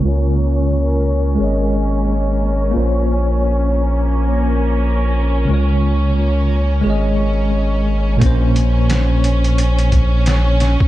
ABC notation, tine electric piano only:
X:1
M:4/4
L:1/8
Q:"Swing 16ths" 1/4=88
K:Bbm
V:1 name="Tine electric piano"
[D,A,Fd]4 [A,Ade]4 | [B,Fcd]8 | [D,A,Fd]4 [A,Ade]4 | [B,,B,Dc]8 |]